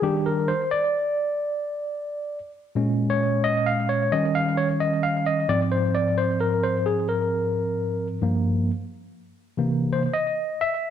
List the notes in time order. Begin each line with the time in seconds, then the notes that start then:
0.02 D#3 G3 D4 G4
0.26 A#4
0.48 C5
0.71 D5
2.75 A#2 G#3 C#4
3.10 C#5
3.44 D#5
3.66 F5
3.89 C#5
4.12 D#3 G3 C#4 D#5
4.35 F5
4.57 C#5
4.80 D#5
5.03 F5
5.27 D#5
5.48 G#2 F3 C4 D5
5.72 C5
5.95 D5
6.18 C5
6.41 A#4
6.63 C5
6.86 G#4
7.09 A#4
8.22 G2 F3 A#3
9.57 C3 E3 A#3
9.93 C5
10.14 D#5
10.61 E5